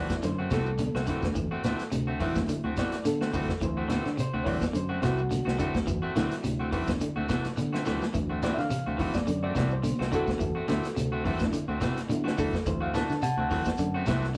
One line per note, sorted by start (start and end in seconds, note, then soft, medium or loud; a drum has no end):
0.00 0.13 E3 medium
0.00 0.14 E3 medium
0.00 0.33 F#3 medium
0.00 0.13 A3 medium
0.00 0.14 C4 medium
0.00 0.33 C4 soft
0.00 0.34 E4 medium
0.00 0.14 F#4 medium
0.00 0.23 D5 medium
0.09 kick medium
0.09 snare medium
0.09 closed hi-hat medium
0.09 high conga medium
0.09 claves medium
0.09 shekere medium
0.23 0.47 F#2 medium
0.23 0.43 D3 medium
0.23 0.51 C5 medium
0.23 snare soft
0.23 closed hi-hat medium
0.23 high conga soft
0.23 shekere medium
0.39 0.51 A3 soft
0.39 0.52 C4 soft
0.39 0.52 F#4 medium
0.51 0.87 C2 loud
0.51 0.71 C3 medium
0.51 0.69 E3 medium
0.51 0.70 A3 medium
0.51 0.70 C4 medium
0.51 0.70 F#4 medium
0.51 2.17 A4 medium
0.51 kick medium
0.51 snare medium
0.51 closed hi-hat soft
0.51 high conga loud
0.51 claves medium
0.51 shekere medium
0.66 shekere soft
0.78 0.99 D3 medium
0.78 closed hi-hat medium
0.78 high conga medium
0.78 shekere medium
0.94 1.05 C2 medium
0.94 1.07 A3 soft
0.94 1.08 C4 soft
0.94 1.08 F#4 medium
0.94 snare medium
0.94 high conga medium
0.94 claves medium
1.07 1.27 D3 medium
1.07 1.26 E3 medium
1.07 1.26 A3 medium
1.07 1.26 C4 medium
1.07 1.26 F#4 medium
1.07 kick medium
1.07 snare soft
1.07 closed hi-hat soft
1.07 low conga medium
1.07 shekere medium
1.22 1.46 D2 medium
1.22 kick medium
1.22 snare medium
1.22 high conga medium
1.22 shekere soft
1.35 1.55 E3 medium
1.35 kick medium
1.35 closed hi-hat medium
1.35 high conga soft
1.35 claves medium
1.35 shekere medium
1.51 1.63 A3 medium
1.51 1.64 C4 medium
1.51 1.64 F#4 medium
1.51 muted fingered electric bass stroke soft
1.64 1.77 D2 medium
1.64 1.82 E3 medium
1.64 1.82 A3 medium
1.64 1.82 C4 medium
1.64 1.83 F#4 medium
1.64 snare medium
1.64 closed hi-hat soft
1.64 high conga medium
1.64 shekere medium
1.79 muted fingered electric bass stroke soft
1.79 snare soft
1.79 closed hi-hat soft
1.79 shekere soft
1.92 2.29 D2 medium
1.92 2.11 C3 medium
1.92 closed hi-hat medium
1.92 high conga soft
1.92 claves medium
1.92 shekere medium
2.07 2.20 A3 medium
2.07 2.20 C4 soft
2.07 2.21 F#4 medium
2.20 2.40 E3 medium
2.20 2.39 E3 medium
2.20 3.01 F#3 medium
2.20 2.39 A3 medium
2.20 2.39 C4 medium
2.20 3.02 C4 medium
2.20 3.02 E4 medium
2.20 2.39 F#4 medium
2.20 kick medium
2.20 open hi-hat medium
2.20 low conga medium
2.20 shekere soft
2.35 2.47 D2 medium
2.35 kick medium
2.35 snare medium
2.35 closed hi-hat soft
2.35 high conga medium
2.35 claves medium
2.35 shekere medium
2.49 2.69 D3 medium
2.49 closed hi-hat medium
2.49 high conga soft
2.49 shekere medium
2.64 2.75 D2 medium
2.64 2.77 A3 soft
2.64 2.77 C4 soft
2.64 2.77 F#4 soft
2.77 2.95 E3 medium
2.77 2.96 A3 medium
2.77 2.96 C4 medium
2.77 2.96 F#4 medium
2.77 3.05 D5 medium
2.77 kick medium
2.77 snare medium
2.77 closed hi-hat soft
2.77 high conga medium
2.77 claves medium
2.77 shekere medium
2.92 muted fingered electric bass stroke soft
2.92 snare soft
2.92 closed hi-hat soft
2.92 shekere soft
3.05 3.25 D3 medium
3.05 3.29 D3 medium
3.05 3.61 A4 medium
3.05 closed hi-hat medium
3.05 high conga medium
3.05 shekere medium
3.21 3.32 A3 soft
3.21 3.33 C4 soft
3.21 3.33 F#4 medium
3.21 snare medium
3.21 high conga medium
3.21 claves medium
3.33 3.46 D2 medium
3.33 3.53 D3 medium
3.33 3.51 E3 medium
3.33 3.51 A3 medium
3.33 3.52 C4 medium
3.33 3.52 F#4 medium
3.33 kick medium
3.33 open hi-hat medium
3.33 low conga medium
3.33 shekere medium
3.48 kick medium
3.48 snare medium
3.48 shekere soft
3.61 3.98 D2 loud
3.61 3.81 E3 loud
3.61 3.87 F#3 medium
3.61 4.01 C4 soft
3.61 4.01 E4 medium
3.61 4.17 C5 medium
3.61 kick medium
3.61 closed hi-hat medium
3.61 high conga soft
3.61 claves medium
3.61 shekere medium
3.77 3.89 A3 soft
3.77 3.89 C4 medium
3.77 3.89 F#4 medium
3.89 4.09 D3 medium
3.89 4.08 E3 medium
3.89 4.08 A3 medium
3.89 4.08 C4 medium
3.89 4.08 F#4 medium
3.89 snare medium
3.89 closed hi-hat medium
3.89 high conga medium
3.89 shekere medium
4.05 4.17 D3 medium
4.05 snare soft
4.05 shekere soft
4.17 4.37 C3 medium
4.17 4.47 C5 medium
4.17 closed hi-hat medium
4.17 high conga soft
4.17 claves medium
4.17 shekere medium
4.34 4.57 D2 medium
4.34 4.45 A3 soft
4.34 4.46 C4 soft
4.34 4.46 F#4 medium
4.44 4.65 E3 medium
4.44 4.64 E3 medium
4.44 4.64 A3 medium
4.44 4.65 C4 medium
4.44 4.65 F#4 medium
4.44 4.48 C#5 medium
4.44 kick medium
4.44 open hi-hat medium
4.44 low conga medium
4.44 shekere soft
4.49 4.75 D5 medium
4.61 kick medium
4.61 snare medium
4.61 closed hi-hat medium
4.61 high conga medium
4.61 claves medium
4.61 shekere medium
4.73 4.98 F#2 medium
4.73 4.93 D3 medium
4.73 5.03 C5 medium
4.73 closed hi-hat medium
4.73 high conga soft
4.73 shekere medium
4.89 5.01 A3 soft
4.89 5.01 C4 medium
4.89 5.02 F#4 medium
5.02 5.39 C2 loud
5.02 5.22 C3 medium
5.02 5.20 E3 medium
5.02 5.20 A3 medium
5.02 5.21 C4 medium
5.02 5.21 F#4 medium
5.02 6.70 F#4 medium
5.02 kick medium
5.02 snare medium
5.02 closed hi-hat medium
5.02 high conga medium
5.02 claves medium
5.02 shekere medium
5.18 shekere soft
5.31 5.50 D3 medium
5.31 closed hi-hat medium
5.31 high conga medium
5.31 shekere medium
5.45 5.58 C2 medium
5.45 5.58 A3 soft
5.45 5.58 C4 soft
5.45 5.59 F#4 soft
5.45 snare medium
5.45 high conga medium
5.45 claves medium
5.59 5.79 D3 medium
5.59 5.77 E3 medium
5.59 5.77 A3 medium
5.59 5.77 C4 medium
5.59 5.78 F#4 medium
5.59 kick medium
5.59 closed hi-hat soft
5.59 low conga medium
5.59 shekere medium
5.74 5.98 D2 medium
5.74 kick medium
5.74 snare medium
5.74 high conga medium
5.74 shekere soft
5.87 6.07 E3 medium
5.87 kick medium
5.87 closed hi-hat medium
5.87 high conga soft
5.87 claves medium
5.87 shekere medium
6.02 6.15 A3 soft
6.02 6.15 C4 medium
6.02 6.15 F#4 medium
6.02 muted fingered electric bass stroke soft
6.15 6.29 D2 medium
6.15 6.36 D3 medium
6.15 6.33 E3 medium
6.15 8.12 F#3 medium
6.15 6.34 A3 medium
6.15 8.12 C4 soft
6.15 6.34 C4 medium
6.15 8.38 E4 medium
6.15 6.34 F#4 medium
6.15 snare medium
6.15 closed hi-hat soft
6.15 high conga medium
6.15 shekere medium
6.31 muted fingered electric bass stroke soft
6.31 snare soft
6.31 closed hi-hat medium
6.31 shekere soft
6.44 6.81 D2 medium
6.44 6.64 C3 medium
6.44 closed hi-hat medium
6.44 high conga soft
6.44 claves medium
6.44 shekere medium
6.59 6.71 A3 soft
6.59 6.72 C4 medium
6.59 6.72 F#4 medium
6.72 6.90 E3 medium
6.72 6.92 E3 medium
6.72 6.90 A3 medium
6.72 6.90 C4 medium
6.72 6.91 F#4 medium
6.72 kick medium
6.72 open hi-hat medium
6.72 low conga medium
6.72 shekere soft
6.87 6.99 D2 medium
6.87 kick medium
6.87 snare medium
6.87 closed hi-hat soft
6.87 high conga medium
6.87 claves medium
6.87 shekere medium
7.01 7.21 D3 medium
7.01 closed hi-hat medium
7.01 high conga soft
7.01 shekere medium
7.16 7.27 D2 medium
7.16 7.28 A3 soft
7.16 7.29 C4 soft
7.16 7.29 F#4 medium
7.29 7.49 C3 medium
7.29 7.47 E3 medium
7.29 7.47 A3 medium
7.29 7.47 F#4 medium
7.29 muted clean electric guitar stroke medium
7.29 kick medium
7.29 snare medium
7.29 closed hi-hat soft
7.29 high conga loud
7.29 claves medium
7.29 shekere medium
7.44 muted fingered electric bass stroke soft
7.44 snare soft
7.44 closed hi-hat medium
7.44 shekere soft
7.57 7.77 D3 medium
7.57 7.81 D3 medium
7.57 closed hi-hat medium
7.57 high conga medium
7.57 shekere medium
7.73 7.85 A3 soft
7.73 7.85 C4 medium
7.73 7.86 F#4 medium
7.73 snare medium
7.73 claves medium
7.85 7.99 D2 medium
7.85 8.05 D3 medium
7.85 8.03 E3 medium
7.85 8.04 A3 medium
7.85 8.04 C4 medium
7.85 8.04 F#4 medium
7.85 snare soft
7.85 low conga medium
7.85 shekere medium
8.00 snare medium
8.00 high conga medium
8.00 shekere soft
8.13 8.50 D2 loud
8.13 8.33 E3 medium
8.13 10.36 E3 medium
8.13 10.36 F#3 medium
8.13 10.36 C4 soft
8.13 kick medium
8.13 closed hi-hat medium
8.13 high conga soft
8.13 claves medium
8.13 shekere medium
8.30 8.42 A3 soft
8.30 8.42 C4 soft
8.30 8.42 F#4 medium
8.43 8.60 E3 medium
8.43 8.60 A3 medium
8.43 8.61 C4 medium
8.43 8.61 F#4 medium
8.43 8.57 D5 loud
8.43 snare medium
8.43 closed hi-hat medium
8.43 high conga medium
8.43 shekere medium
8.54 8.57 E5 medium
8.54 shekere soft
8.58 8.69 D3 medium
8.58 9.13 F5 medium
8.58 snare soft
8.70 8.90 C3 medium
8.70 closed hi-hat medium
8.70 high conga soft
8.70 claves medium
8.70 shekere medium
8.86 9.10 D2 medium
8.86 8.99 A3 soft
8.86 8.99 C4 soft
8.86 8.99 F#4 soft
8.98 9.18 E3 medium
8.98 9.17 E3 medium
8.98 9.17 A3 medium
8.98 9.17 C4 medium
8.98 9.17 F#4 medium
8.98 kick medium
8.98 open hi-hat medium
8.98 low conga medium
8.98 shekere soft
9.14 9.42 D5 medium
9.14 kick medium
9.14 snare medium
9.14 closed hi-hat soft
9.14 high conga medium
9.14 claves medium
9.14 shekere medium
9.27 9.51 F#2 loud
9.27 9.47 D3 medium
9.27 closed hi-hat medium
9.27 high conga soft
9.27 shekere medium
9.43 9.55 A3 soft
9.43 9.55 C4 medium
9.43 9.56 F#4 medium
9.43 9.55 D5 medium
9.55 9.92 C2 loud
9.55 9.74 C3 medium
9.55 9.73 E3 medium
9.55 9.73 A3 medium
9.55 9.74 C4 medium
9.55 9.74 F#4 medium
9.55 9.71 D5 medium
9.55 kick medium
9.55 snare medium
9.55 closed hi-hat medium
9.55 high conga medium
9.55 claves medium
9.55 shekere medium
9.71 10.12 C5 medium
9.71 shekere soft
9.83 10.03 D3 medium
9.83 closed hi-hat medium
9.83 high conga medium
9.83 shekere medium
9.99 10.10 C2 medium
9.99 10.11 A3 soft
9.99 10.11 C4 soft
9.99 10.12 F#4 soft
9.99 snare medium
9.99 claves medium
10.12 10.31 D3 medium
10.12 10.30 E3 medium
10.12 10.30 A3 medium
10.12 10.30 C4 medium
10.12 10.30 F#4 medium
10.12 11.22 F#4 medium
10.12 11.23 A4 loud
10.12 kick medium
10.12 closed hi-hat soft
10.12 low conga medium
10.12 shekere medium
10.27 10.51 D2 medium
10.27 kick medium
10.27 snare medium
10.27 high conga medium
10.27 shekere soft
10.39 10.59 E3 medium
10.39 kick medium
10.39 closed hi-hat medium
10.39 high conga soft
10.39 claves medium
10.39 shekere medium
10.55 10.68 A3 soft
10.55 10.68 C4 soft
10.55 10.68 F#4 medium
10.55 muted fingered electric bass stroke soft
10.68 10.82 D2 medium
10.68 10.88 D3 medium
10.68 10.86 E3 medium
10.68 10.86 A3 medium
10.68 10.86 C4 medium
10.68 10.87 F#4 medium
10.68 snare medium
10.68 closed hi-hat medium
10.68 high conga medium
10.68 shekere medium
10.83 muted fingered electric bass stroke soft
10.83 snare soft
10.83 closed hi-hat medium
10.83 shekere soft
10.96 11.33 D2 medium
10.96 11.16 C3 medium
10.96 closed hi-hat medium
10.96 high conga soft
10.96 claves medium
10.96 shekere medium
11.12 11.25 A3 soft
11.12 11.25 C4 soft
11.12 11.25 F#4 medium
11.25 11.44 E3 medium
11.25 11.43 E3 medium
11.25 11.63 F#3 medium
11.25 11.43 A3 medium
11.25 11.64 C4 soft
11.25 11.43 C4 medium
11.25 11.64 E4 medium
11.25 11.43 F#4 medium
11.25 kick medium
11.25 open hi-hat medium
11.25 low conga medium
11.25 shekere soft
11.40 11.51 D2 loud
11.40 kick medium
11.40 snare medium
11.40 closed hi-hat medium
11.40 high conga medium
11.40 claves medium
11.40 shekere medium
11.53 11.73 D3 medium
11.53 closed hi-hat medium
11.53 high conga soft
11.53 shekere medium
11.68 11.79 D2 medium
11.68 11.80 A3 soft
11.68 11.80 C4 medium
11.68 11.81 F#4 medium
11.81 12.01 C3 medium
11.81 11.99 E3 medium
11.81 11.99 A3 medium
11.81 11.99 C4 medium
11.81 11.99 F#4 medium
11.81 kick medium
11.81 snare medium
11.81 closed hi-hat soft
11.81 high conga loud
11.81 claves medium
11.81 shekere medium
11.96 muted fingered electric bass stroke soft
11.96 snare soft
11.96 closed hi-hat soft
11.96 shekere soft
12.09 12.33 D3 loud
12.09 12.29 D3 medium
12.09 12.35 F#3 soft
12.09 12.35 C4 soft
12.09 12.36 E4 soft
12.09 closed hi-hat medium
12.09 high conga medium
12.09 shekere medium
12.24 12.37 A3 soft
12.24 12.37 C4 soft
12.24 12.37 F#4 medium
12.24 snare medium
12.24 claves medium
12.37 12.51 D2 loud
12.37 12.58 D3 medium
12.37 12.55 E3 medium
12.37 12.56 A3 medium
12.37 12.56 F#4 medium
12.37 12.66 A4 medium
12.37 muted clean electric guitar stroke medium
12.37 kick medium
12.37 open hi-hat medium
12.37 low conga medium
12.37 shekere medium
12.53 kick medium
12.53 snare medium
12.53 shekere soft
12.66 13.02 D2 loud
12.66 12.86 E3 medium
12.66 13.04 F#3 soft
12.66 13.05 C4 soft
12.66 13.05 E4 medium
12.66 12.81 C5 medium
12.66 kick medium
12.66 closed hi-hat medium
12.66 high conga soft
12.66 claves medium
12.66 shekere medium
12.81 12.93 A3 soft
12.81 12.95 C4 soft
12.81 12.94 F#4 medium
12.81 12.94 F5 medium
12.94 13.14 D3 medium
12.94 13.12 E3 medium
12.94 13.12 A3 medium
12.94 13.13 F#4 medium
12.94 13.22 A5 loud
12.94 snare medium
12.94 closed hi-hat medium
12.94 high conga medium
12.94 shekere medium
13.09 13.20 D3 medium
13.09 snare soft
13.09 shekere soft
13.22 13.42 C3 medium
13.22 14.32 F#5 medium
13.22 14.33 A5 loud
13.22 closed hi-hat medium
13.22 high conga soft
13.22 claves medium
13.22 shekere medium
13.37 13.61 D2 medium
13.37 13.50 A3 soft
13.37 13.50 C4 soft
13.37 13.51 F#4 medium
13.51 13.70 E3 medium
13.51 13.69 E3 medium
13.51 13.69 A3 medium
13.51 13.69 C4 medium
13.51 13.69 F#4 medium
13.51 kick medium
13.51 snare soft
13.51 open hi-hat medium
13.51 low conga medium
13.51 shekere soft
13.65 kick medium
13.65 snare medium
13.65 closed hi-hat medium
13.65 high conga medium
13.65 claves medium
13.65 shekere medium
13.78 14.02 F#2 loud
13.78 13.99 D3 medium
13.78 closed hi-hat medium
13.78 high conga soft
13.78 shekere medium
13.94 14.07 A3 soft
13.94 14.07 C4 medium
13.94 14.08 F#4 medium
14.06 14.37 C2 loud
14.06 14.27 C3 medium
14.06 14.25 E3 medium
14.06 14.32 F#3 soft
14.06 14.26 A3 medium
14.06 14.33 C4 soft
14.06 14.26 C4 medium
14.06 14.33 E4 medium
14.06 14.26 F#4 medium
14.06 kick medium
14.06 snare medium
14.06 closed hi-hat medium
14.06 high conga medium
14.06 claves medium
14.06 shekere medium
14.22 snare soft
14.22 shekere soft